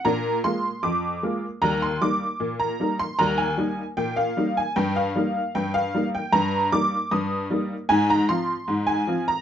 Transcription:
<<
  \new Staff \with { instrumentName = "Honky-tonk piano" } { \time 2/4 \key ees \major \tempo 4 = 76 bes''8 c'''8 d'''4 | bes''16 c'''16 d'''8. bes''8 c'''16 | bes''16 aes''8. g''16 f''8 aes''16 | g''16 f''8. g''16 f''8 g''16 |
bes''8 d'''8 ees'''4 | aes''16 bes''16 c'''8. aes''8 bes''16 | }
  \new Staff \with { instrumentName = "Honky-tonk piano" } { \clef bass \time 2/4 \key ees \major <bes, d'>8 <aes bes f'>8 f,8 <aes bes f'>8 | <ees, g>8 <g bes ees'>8 bes,8 <g bes ees'>8 | <ees, g>8 <g bes ees'>8 bes,8 <g bes ees'>8 | g,8 <g bes ees'>8 g,8 <g bes ees'>8 |
g,8 <g bes ees'>8 g,8 <g bes ees'>8 | aes,8 <f c' f'>8 aes,8 <f c' f'>8 | }
>>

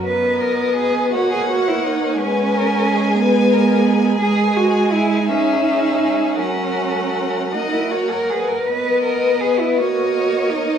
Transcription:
<<
  \new Staff \with { instrumentName = "Violin" } { \time 6/8 \key b \major \tempo 4. = 55 dis''4. fis''4. | gis''2. | gis''4. e''4. | fis''2~ fis''8 r8 |
dis''4. dis''4. | }
  \new Staff \with { instrumentName = "Violin" } { \time 6/8 \key b \major b'4. cis''4. | b'8 ais'8 gis'8 b'8 ais'8 gis'8~ | gis'4. gis'4. | ais'4. dis''8 cis''8 b'8 |
b'4. cis''4. | }
  \new Staff \with { instrumentName = "Cello" } { \time 6/8 \key b \major b'8 ais'8 gis'8 fis'16 gis'16 fis'16 e'16 dis'8 | cis'4. b4. | gis'8 fis'8 e'8 dis'4. | cis'4. dis'16 e'16 fis'16 ais'16 gis'16 ais'16 |
b'8 ais'8 gis'16 e'16 fis'4 dis'8 | }
  \new Staff \with { instrumentName = "Viola" } { \time 6/8 \key b \major b4. ais4. | gis2. | gis4. cis'4. | fis4. ais4 r8 |
b4. ais4. | }
>>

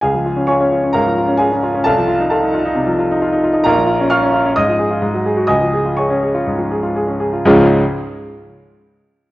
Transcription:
\new Staff \with { instrumentName = "Grand piano" } { \time 4/4 \key des \major \tempo 4 = 130 << { <aes' f'' aes''>4 <des'' aes'' des'''>4 <bes' f'' bes''>4 <aes' f'' aes''>4 | <a' f'' a''>4 <a' f'' a''>2~ <a' f'' a''>8 r8 | <bes' f'' bes''>4 <f'' des''' f'''>4 <ees'' ees'''>2 | <ees'' aes'' ees'''>4 <des'' aes'' des'''>2~ <des'' aes'' des'''>8 r8 |
<des, aes, f aes des' f'>8 r2. r8 | } \\ { des,16 f16 f'16 des'16 f'16 des'16 f'16 des'16 aes,16 f16 f'16 des'16 f'16 des'16 f'16 des'16 | c,16 f16 f'16 ees'16 f'16 ees'16 f'16 ees'16 c16 f16 f'16 ees'16 f'16 ees'16 f'16 ees'16 | bes,,16 f16 f'16 des'16 f'16 des'16 f'16 des'16 aes,16 f16 aes'16 f'16 aes,16 ges16 aes'16 ges'16 | des,16 f16 aes'16 f'16 aes'16 des'16 aes'16 f'16 aes,16 f16 aes'16 f'16 aes'16 des'16 aes'16 f'16 |
r1 | } >> }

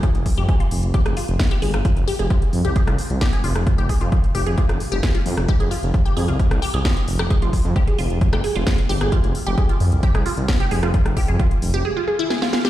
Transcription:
<<
  \new Staff \with { instrumentName = "Synth arpeggio sound" } { \time 4/4 \key f \minor \tempo 4 = 132 f'16 r8 g'16 aes'16 f'16 r8 g'16 aes'16 f'16 r8 g'16 aes'16 f'16 | r8 g'16 aes'16 f'16 r8 g'16 aes'16 f'16 r8 g'16 aes'16 f'16 r16 | r16 g'16 aes'16 f'16 r8 g'16 aes'16 f'16 r8 g'16 aes'16 f'16 r8 | g'16 aes'16 f'16 r8 g'16 aes'16 f'16 r8 g'16 aes'16 f'16 r8 g'16 |
aes'16 f'16 r8 g'16 aes'16 f'16 r8 g'16 aes'16 f'16 r8 g'16 aes'16 | f'16 r8 g'16 aes'16 f'16 r8 g'16 aes'16 f'16 r8 g'16 aes'16 f'16 | r8 g'16 aes'16 f'16 r8 g'16 aes'16 f'16 aes'16 e'16 aes'16 f'16 f''16 g'16 | }
  \new Staff \with { instrumentName = "Detuned saw bass" } { \clef bass \time 4/4 \key f \minor r16 f,,16 r16 f,16 r8 f,,16 f,,16 r16 f,,16 r16 f,,16 r8 g,,16 g,,16 | r16 f,,16 r16 f,,16 r8 f,16 c,16 r16 c,16 r16 c,16 r8 f,,16 f,,16 | r16 f,,16 r16 f,16 r8 f,,16 f,,16 r16 f,,16 r16 f,,16 r8 f,16 f,,16 | r16 f,,16 r16 f,,16 r8 f,16 c,16 r16 c,16 r16 c,16 r8 f,,16 f,,16 |
r16 f,,16 r16 f,16 r8 f,,16 f,,16 r16 f,,16 r16 f,,16 r8 g,,16 g,,16 | r16 f,,16 r16 f,,16 r8 f,16 c,16 r16 c,16 r16 c,16 r8 f,,16 f,,16 | r16 f,,16 r16 f,16 r8 f,,16 f,,16 r2 | }
  \new DrumStaff \with { instrumentName = "Drums" } \drummode { \time 4/4 <hh bd>16 hh16 <hho bd>16 hh16 <hh bd>16 hh16 hho16 hh16 <hh bd>16 <hh ss>16 hho16 hh16 <hh bd sn>16 hh16 hho16 <hh ss>16 | <hh bd>16 hh16 hho16 hh16 <hh bd>16 hh16 hho16 hh16 <hh bd>16 <hh ss>16 hho16 hh16 <hh bd sn>16 hh16 hho16 ss16 | <hh bd>16 hh16 <hho bd>16 hh16 <hh bd>16 hh16 hho16 hh16 <hh bd>16 <hh ss>16 hho16 hh16 <hh bd sn>16 hh16 hho16 <hh ss>16 | <hh bd>16 hh16 hho16 hh16 <hh bd>16 hh16 hho16 hh16 <hh bd>16 <hh ss>16 hho16 hh16 <hh bd sn>16 hh16 hho16 ss16 |
<hh bd>16 hh16 <hho bd>16 hh16 <hh bd>16 hh16 hho16 hh16 <hh bd>16 <hh ss>16 hho16 hh16 <hh bd sn>16 hh16 hho16 <hh ss>16 | <hh bd>16 hh16 hho16 hh16 <hh bd>16 hh16 hho16 hh16 <hh bd>16 <hh ss>16 hho16 hh16 <hh bd sn>16 hh16 hho16 <hh ss>16 | <hh bd>16 <hh ss>16 <hho bd>16 hh16 <hh bd>16 hh16 hho16 hh16 r4 sn16 sn16 sn16 sn16 | }
>>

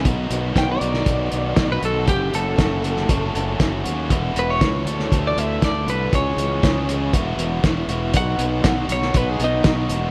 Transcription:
<<
  \new Staff \with { instrumentName = "Clean electric guitar" } { \time 4/4 \key b \mixolydian \tempo 4 = 119 r4 g''16 d''2 b'16 a'8 | g'8 a'2. r8 | r8 b'16 cis''4. d''16 e''8 d''8 b'8 | cis''2 r2 |
fis''4. cis''8 b'16 gis'16 dis'4 r8 | }
  \new Staff \with { instrumentName = "Overdriven electric guitar" } { \time 4/4 \key b \mixolydian <dis b dis' fis'>4 <dis b dis' fis'>8 <b dis' fis'>8 <dis b dis' fis'>4 <dis b dis' fis'>8 <b dis' fis'>8 | <fis a cis' fis'>4 <fis a cis' fis'>8 <a cis' fis'>8 <fis a cis' fis'>4 <fis a cis' fis'>8 <a cis' fis'>8 | <e b e' fis'>4 <e b e' fis'>8 <e a d' a'>8 <e a d' a'>4 <e a d' a'>8 <a d' a'>8 | <e gis cis' gis'>4 <e gis cis' gis'>8 <gis cis' gis'>8 <e b e' fis'>4 <e b e' fis'>8 <b e' fis'>8 |
<b dis' fis'>4 <b dis' fis'>8 <dis' fis'>8 <b dis' fis'>4 <b dis' fis'>8 <dis' fis'>8 | }
  \new Staff \with { instrumentName = "Fingered electric bass" } { \clef bass \time 4/4 \key b \mixolydian b,,8 b,,8 b,,8 b,,8 b,,8 b,,8 b,,8 b,,8 | fis,,8 fis,,8 fis,,4 fis,,8 fis,,8 fis,,8 dis,8 | e,,8 e,,8 cis,8 d,8 d,8 d,8 d,8 c,8 | cis,8 cis,8 cis,4 e,,8 e,,8 e,,8 e,,8 |
b,,8 b,,8 b,,8 b,,8 b,,8 b,,8 b,,8 e,,8 | }
  \new DrumStaff \with { instrumentName = "Drums" } \drummode { \time 4/4 <hh bd>8 hh8 <hh bd sn>8 hh16 sn16 <hh bd>8 hh8 <hh bd sn>8 hh8 | <hh bd>8 hh8 <hh bd sn>8 hh16 sn16 <hh bd>8 hh8 <hh bd sn>8 hh8 | <hh bd>8 hh8 <hh bd sn>8 hh16 sn16 <hh bd>8 hh8 <hh bd sn>8 hh8 | <hh bd>8 hh8 <hh bd sn>8 hh8 <hh bd>8 hh8 <hh bd sn>8 hh8 |
<hh bd>8 hh8 <hh bd sn>8 hh16 sn16 <hh bd>8 hh8 <hh bd sn>8 hh8 | }
>>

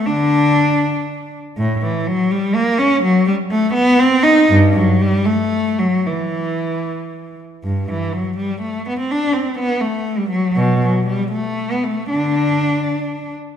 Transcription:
\new Staff \with { instrumentName = "Cello" } { \clef bass \time 6/8 \key d \mixolydian \tempo 4. = 80 << { d'2~ d'8 r8 | \key e \minor a,8 e8 fis8 g8 ais8 cis'8 | fis8 g8 a8 b8 c'8 dis'8 | g,8 fis8 g8 a4 fis8 |
e2~ e8 r8 | \key d \mixolydian g,8 e8 fis8 g8 a8 b16 c'16 | d'8 c'8 b8 a8. g16 fis8 | b,8 fis8 g8 a8. b16 a8 |
d'2~ d'8 r8 | } \\ { d4. r4. | r2. | r2. | r2. |
r2. | r2. | r2. | r2. |
d4. r4. | } >> }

